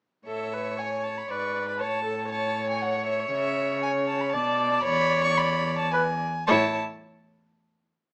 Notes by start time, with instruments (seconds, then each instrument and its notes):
0.26 cello A2, viola A4, violin C#5 E5
0.53 viola B4
0.79 viola C#5, violin G#5
1.04 violin A5
1.18 violin B5
1.30 cello G#2, viola B4, violin D5 C#6
1.68 violin B5
1.80 cello A2, viola C#5, violin C#5 A5
2.04 viola A4
2.30 viola C#5, violin A5
2.70 violin G#5
2.82 violin F#5
3.06 violin E5
3.31 cello C#3, violin E5
3.83 violin G#5
4.07 violin A5
4.21 violin B5
4.32 cello B2, violin D5 A5, viola D5
4.72 violin A5
4.84 cello E2, viola C#5, violin B5
5.24 violin C#6
5.37 violin B5
5.79 violin A5
5.91 viola B4, violin G#5
6.46 cello A2, viola E4, violin C#5 A5